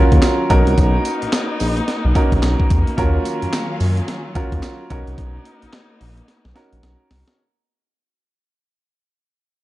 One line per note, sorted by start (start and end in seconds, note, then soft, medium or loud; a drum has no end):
0.00 0.48 D#3 medium
0.00 0.48 F#3 medium
0.00 0.48 A#3 medium
0.00 0.48 C#4 medium
0.00 0.49 C#4 medium
0.00 0.52 F4 medium
0.00 0.50 F#4 medium
0.00 0.51 A#4 medium
0.00 0.48 F5 medium
0.12 0.20 D#2 medium
0.12 kick loud
0.12 closed hi-hat medium
0.22 snare loud
0.22 clap medium
0.22 closed hi-hat medium
0.22 tambourine loud
0.49 0.63 B1 loud
0.49 4.87 A#3 medium
0.49 2.95 B3 medium
0.49 1.50 C#4 medium
0.49 1.50 D#4 medium
0.49 2.95 D#4 medium
0.49 1.50 F#4 medium
0.49 1.51 A#4 loud
0.49 kick loud
0.49 closed hi-hat medium
0.49 tambourine medium
0.67 0.75 C2 medium
0.67 closed hi-hat medium
0.78 0.98 B1 loud
0.78 kick loud
0.78 closed hi-hat medium
0.78 tambourine medium
1.05 closed hi-hat medium
1.05 tambourine medium
1.22 1.26 A#1 medium
1.22 closed hi-hat medium
1.32 snare loud
1.32 clap medium
1.32 closed hi-hat medium
1.32 tambourine loud
1.60 1.81 A#1 medium
1.60 open hi-hat medium
1.60 tambourine medium
1.77 closed hi-hat soft
1.88 snare medium
1.88 closed hi-hat medium
2.05 2.13 B1 loud
2.15 2.90 C#4 medium
2.15 2.90 D#4 medium
2.15 2.91 F#4 medium
2.15 2.91 A#4 medium
2.15 kick loud
2.15 closed hi-hat medium
2.15 tambourine medium
2.32 2.40 A#1 medium
2.32 kick medium
2.32 closed hi-hat medium
2.43 2.55 B1 medium
2.43 snare loud
2.43 clap loud
2.43 closed hi-hat medium
2.43 tambourine medium
2.60 kick loud
2.70 2.83 E2 loud
2.70 kick loud
2.70 closed hi-hat medium
2.70 tambourine medium
2.87 closed hi-hat soft
2.97 3.18 D#2 loud
2.97 4.89 D#3 medium
2.97 4.89 F#3 medium
2.97 3.98 C#4 medium
2.97 4.89 C#4 medium
2.97 3.98 F4 medium
2.97 3.98 F#4 medium
2.97 3.98 A#4 medium
2.97 4.89 F5 medium
2.97 kick loud
2.97 closed hi-hat medium
2.97 tambourine medium
3.25 closed hi-hat medium
3.25 tambourine medium
3.42 3.47 F#2 soft
3.42 closed hi-hat medium
3.53 snare loud
3.53 clap medium
3.53 closed hi-hat medium
3.53 tambourine loud
3.80 4.01 F#2 medium
3.80 open hi-hat medium
3.80 tambourine medium
3.97 closed hi-hat medium
4.08 snare medium
4.08 closed hi-hat medium
4.35 4.42 D#2 soft
4.35 4.88 C#4 medium
4.35 4.90 F4 medium
4.35 4.89 F#4 medium
4.35 4.90 A#4 medium
4.35 kick loud
4.35 closed hi-hat medium
4.35 tambourine medium
4.52 4.60 D#2 medium
4.52 kick medium
4.52 closed hi-hat medium
4.63 snare loud
4.63 clap loud
4.63 closed hi-hat medium
4.63 tambourine loud
4.90 5.03 B1 medium
4.90 7.36 A#3 medium
4.90 7.36 B3 medium
4.90 5.90 C#4 medium
4.90 5.91 D#4 medium
4.90 7.36 D#4 medium
4.90 5.91 F#4 medium
4.90 5.91 A#4 medium
4.90 kick loud
4.90 closed hi-hat medium
4.90 tambourine medium
5.07 5.15 C2 medium
5.07 closed hi-hat medium
5.18 5.38 B1 loud
5.18 kick loud
5.18 closed hi-hat medium
5.45 closed hi-hat medium
5.62 5.67 A#1 soft
5.62 closed hi-hat medium
5.73 snare loud
5.73 clap medium
5.73 closed hi-hat medium
6.01 6.21 A#1 medium
6.01 open hi-hat medium
6.17 closed hi-hat soft
6.28 snare medium
6.28 closed hi-hat medium
6.45 6.53 B1 loud
6.45 snare medium
6.55 7.30 C#4 medium
6.55 7.31 D#4 medium
6.55 7.31 F#4 medium
6.55 7.31 A#4 medium
6.55 snare medium
6.55 closed hi-hat medium
6.72 6.80 A#1 loud
6.72 closed hi-hat medium
6.83 6.96 B1 loud
6.83 snare medium
6.83 closed hi-hat medium
7.11 7.23 C2 medium
7.11 snare loud
7.11 open hi-hat medium
7.28 snare medium
7.28 closed hi-hat medium